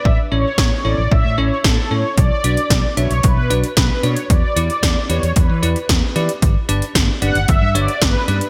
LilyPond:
<<
  \new Staff \with { instrumentName = "Analog polysynth" } { \time 4/4 \key b \minor \tempo 4 = 113 e''8 cis''4 d''8 e''8 cis''8 a'8 cis''8 | d''4. cis''8 b'4 b'8 cis''8 | d''4. cis''8 b'4. r8 | r4. fis''8 e''8 d''8 b'4 | }
  \new Staff \with { instrumentName = "Tine electric piano" } { \time 4/4 \key b \minor r8 <cis' e' a' cis''>8 r8 <cis' e' a' cis''>8 r8 <cis' e' a' cis''>8 r8 <cis' e' a' cis''>8 | r8 <d' fis' b' d''>8 r8 <d' fis' b' e''>8 r8 <d' fis' b' d''>8 r8 <d' fis' b' d''>8 | r8 <e' g' b' d''>8 r8 <e' g' b' d''>8 r8 <e' g' b' d''>8 r8 <e' g' b' d''>8 | r8 <d' g' b' d''>8 r8 <d' g' b' d''>8 r8 <d' g' b' cis''>8 r8 <d' g' b' d''>8 | }
  \new Staff \with { instrumentName = "Fretless electric bass" } { \clef bass \time 4/4 \key b \minor a,,16 r16 a,,16 r16 a,,16 r16 a,,16 a,,16 a,,16 a,16 a,,16 r16 a,,16 r16 a,16 r16 | b,,16 r16 b,,16 r16 b,,16 r16 b,,16 b,,16 b,,16 b,16 b,,16 r16 b,,16 r16 b,16 r16 | e,16 r16 e,16 r16 e,16 r16 e,16 e,16 e,16 e16 e,16 r16 e,16 r16 e16 r16 | g,,16 r16 g,,16 r16 g,,16 r16 g,,16 g,,16 g,,16 g,16 g,,16 r16 g,,16 r16 g,16 r16 | }
  \new DrumStaff \with { instrumentName = "Drums" } \drummode { \time 4/4 bd4 <bd sn>4 bd4 <bd sn>4 | <hh bd>8 hh16 hh16 <hh bd sn>8 hh16 hh16 <hh bd>8 hh16 hh16 <hh bd sn>8 hh16 hh16 | <hh bd>8 hh16 hh16 <hh bd sn>8 hh16 hh16 <hh bd>8 hh16 hh16 <hh bd sn>8 hh16 hh16 | <hh bd>8 hh16 hh16 <hh bd sn>8 hh16 hh16 <hh bd>8 hh16 hh16 <hh bd sn>8 hh16 hh16 | }
>>